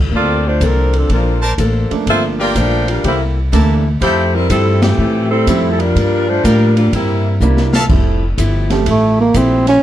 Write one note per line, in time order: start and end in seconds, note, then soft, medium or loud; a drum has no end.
0.00 0.10 C#2 medium
0.11 0.59 D2 medium
0.11 0.46 A#3 soft
0.11 0.44 C4 medium
0.11 0.46 D4 soft
0.11 0.44 F4 medium
0.11 0.47 A4 soft
0.11 0.44 A4 medium
0.11 0.47 C5 soft
0.11 0.44 D5 medium
0.11 kick soft
0.47 0.62 A3 medium
0.47 0.62 D4 medium
0.47 0.62 F4 medium
0.47 0.62 C5 medium
0.61 1.08 C2 medium
0.61 0.95 F3 medium
0.61 0.95 A#3 medium
0.61 0.95 D4 medium
0.61 0.96 A4 medium
0.61 0.95 A#4 medium
0.61 0.96 C5 medium
0.61 kick soft
0.61 hi-hat pedal soft
0.61 ride medium
0.65 0.95 C4 medium
0.93 1.11 F3 medium
0.93 1.11 C4 medium
0.93 1.11 D4 medium
0.93 1.11 A4 medium
0.93 ride soft
1.09 1.57 A#1 medium
1.09 1.41 F3 medium
1.09 1.44 A#3 soft
1.09 1.41 C4 medium
1.09 1.44 D4 soft
1.09 1.41 D4 medium
1.09 1.45 A4 soft
1.09 1.41 A#4 medium
1.09 1.45 C5 soft
1.09 kick soft
1.09 ride medium
1.42 1.53 A#4 medium
1.42 1.53 C5 medium
1.42 1.53 D5 medium
1.42 1.53 A5 medium
1.58 1.88 A1 medium
1.58 1.93 A#3 medium
1.58 1.93 D4 medium
1.58 1.93 A4 medium
1.58 1.93 C5 medium
1.58 kick soft
1.58 hi-hat pedal soft
1.58 ride medium
1.91 2.53 F3 medium
1.91 2.52 A3 medium
1.91 2.53 A#3 soft
1.91 2.53 D4 medium
1.91 muted upright bass stroke soft
1.91 ride soft
2.06 2.54 G1 medium
2.06 2.41 G2 soft
2.06 2.41 F3 soft
2.06 2.42 A#3 soft
2.06 2.22 C4 medium
2.06 2.42 D4 soft
2.06 2.23 F4 medium
2.06 2.23 A4 medium
2.06 2.22 E5 loud
2.06 kick soft
2.06 ride medium
2.39 2.55 A#3 medium
2.39 2.55 F4 medium
2.39 2.55 G4 medium
2.39 3.01 A#4 medium
2.39 3.01 D5 medium
2.39 2.55 D5 medium
2.39 3.01 F5 medium
2.39 3.01 G5 medium
2.55 3.03 A#1 medium
2.55 2.89 G2 medium
2.55 2.90 F3 medium
2.55 2.89 A3 medium
2.55 2.90 A#3 medium
2.55 2.87 D4 medium
2.55 2.90 D4 medium
2.55 2.87 F4 medium
2.55 2.89 C5 medium
2.55 kick soft
2.55 hi-hat pedal soft
2.55 ride medium
2.88 3.03 G3 medium
2.88 3.03 D4 medium
2.88 3.03 F4 medium
2.88 3.03 A#4 medium
2.88 ride soft
3.03 3.51 C2 medium
3.03 3.38 C3 soft
3.03 3.38 A#3 soft
3.03 3.20 A#3 medium
3.03 3.39 E4 soft
3.03 3.20 E4 medium
3.03 3.20 G4 medium
3.03 3.39 A4 soft
3.03 3.19 C5 medium
3.03 kick soft
3.03 ride medium
3.52 4.00 D2 medium
3.52 3.86 C3 medium
3.52 3.82 E3 medium
3.52 3.82 A3 medium
3.52 3.87 A#3 medium
3.52 3.82 A#3 soft
3.52 3.82 D4 medium
3.52 3.87 E4 medium
3.52 3.87 A4 medium
3.52 3.75 A#4 medium
3.52 3.75 D5 medium
3.52 3.75 E5 medium
3.52 3.75 A5 medium
3.52 kick soft
3.52 hi-hat pedal soft
3.52 ride medium
4.00 4.48 F2 medium
4.00 4.35 F3 soft
4.00 4.35 A3 soft
4.00 4.32 A3 medium
4.00 4.35 E4 soft
4.00 4.32 E4 medium
4.00 4.32 G4 medium
4.00 4.36 G4 soft
4.00 4.23 A4 medium
4.00 4.32 C5 loud
4.00 4.23 E5 medium
4.00 4.23 F5 medium
4.00 4.23 G5 medium
4.00 kick soft
4.00 ride medium
4.34 4.48 G3 medium
4.34 4.48 C4 medium
4.34 4.48 E4 medium
4.34 4.50 A#4 loud
4.49 4.97 G2 medium
4.49 4.84 F3 medium
4.49 4.80 G3 medium
4.49 4.84 A3 medium
4.49 4.80 C4 medium
4.49 4.80 E4 medium
4.49 4.84 E4 medium
4.49 4.85 G4 medium
4.49 4.80 A4 medium
4.49 kick soft
4.49 hi-hat pedal medium
4.49 ride medium
4.82 5.31 E3 medium
4.82 5.31 A3 medium
4.82 5.28 C4 medium
4.82 5.31 G4 medium
4.82 snare medium
4.82 ride medium
4.98 5.45 A2 medium
4.98 5.32 F3 soft
4.98 5.33 A3 soft
4.98 5.33 E4 soft
4.98 5.33 G4 soft
5.29 5.67 G3 medium
5.29 5.67 C4 medium
5.29 5.66 E4 medium
5.29 5.67 A4 loud
5.47 5.94 F2 medium
5.47 5.81 F3 medium
5.47 5.76 G3 medium
5.47 5.77 A3 medium
5.47 5.82 A3 soft
5.47 5.77 C4 medium
5.47 5.77 E4 medium
5.47 5.82 E4 medium
5.47 5.82 G4 medium
5.47 kick soft
5.47 hi-hat pedal medium
5.47 ride medium
5.71 5.80 A4 medium
5.79 6.28 G3 medium
5.79 6.27 D4 medium
5.79 6.27 F4 medium
5.79 6.28 A#4 medium
5.79 ride soft
5.95 6.29 G2 soft
5.95 6.43 G2 medium
5.95 6.30 F3 soft
5.95 6.30 A#3 soft
5.95 6.31 D4 medium
5.95 kick soft
5.95 ride medium
6.28 6.44 A3 medium
6.28 6.43 D4 medium
6.28 6.43 F4 medium
6.28 6.44 C5 loud
6.44 6.78 G2 medium
6.44 6.91 A2 medium
6.44 6.78 F3 medium
6.44 6.75 G3 medium
6.44 6.79 A#3 medium
6.44 6.76 D4 medium
6.44 6.79 D4 medium
6.44 6.76 F4 medium
6.44 6.66 A#4 medium
6.44 6.76 A#4 medium
6.44 6.66 D5 medium
6.44 6.66 F5 medium
6.44 6.66 G5 medium
6.44 kick soft
6.44 hi-hat pedal medium
6.44 ride medium
6.77 6.92 G3 medium
6.77 6.92 A#3 medium
6.77 6.92 D4 medium
6.77 6.92 F4 medium
6.77 ride soft
6.92 7.39 G2 medium
6.92 7.26 C3 soft
6.92 7.27 G3 soft
6.92 7.39 G3 medium
6.92 7.38 A#3 medium
6.92 7.27 A#3 soft
6.92 7.39 C4 medium
6.92 7.39 E4 medium
6.92 7.28 E4 medium
6.92 kick soft
6.92 ride medium
7.40 7.88 C2 medium
7.40 7.75 C3 medium
7.40 7.75 G3 medium
7.40 7.71 G3 medium
7.40 7.75 A#3 medium
7.40 7.71 A#3 medium
7.40 7.71 D4 medium
7.40 7.76 E4 medium
7.40 7.71 E4 medium
7.40 hi-hat pedal medium
7.57 snare medium
7.73 7.84 A4 medium
7.73 7.84 E5 medium
7.73 7.84 F5 medium
7.73 7.84 A5 medium
7.73 snare medium
7.89 8.36 F1 medium
7.89 8.23 F3 soft
7.89 8.19 F3 soft
7.89 8.19 G3 soft
7.89 8.19 A3 soft
7.89 8.24 A3 medium
7.89 8.19 C4 soft
7.89 8.19 E4 medium
7.89 8.24 E4 soft
7.89 8.25 G4 medium
7.89 kick medium
7.89 crash medium
8.38 8.85 G1 medium
8.38 8.72 F3 medium
8.38 8.72 A3 medium
8.38 8.72 E4 medium
8.38 8.72 G4 medium
8.38 kick soft
8.38 hi-hat pedal medium
8.38 ride medium
8.70 8.85 F3 medium
8.70 8.85 G3 medium
8.70 8.85 A3 medium
8.70 8.86 C4 medium
8.70 8.86 G4 medium
8.70 snare soft
8.70 ride soft
8.86 9.33 A1 medium
8.86 9.20 F3 soft
8.86 9.21 A3 soft
8.86 9.21 E4 soft
8.86 9.21 G4 soft
8.86 kick soft
8.86 ride medium
8.90 9.19 A3 medium
9.21 9.39 A#3 medium
9.34 9.81 A#1 medium
9.34 9.69 F3 medium
9.34 9.69 A3 medium
9.34 9.68 C4 medium
9.34 9.69 E4 medium
9.34 9.69 G4 medium
9.34 kick soft
9.34 hi-hat pedal medium
9.34 ride medium
9.67 9.83 C#4 medium
9.67 snare soft
9.67 ride soft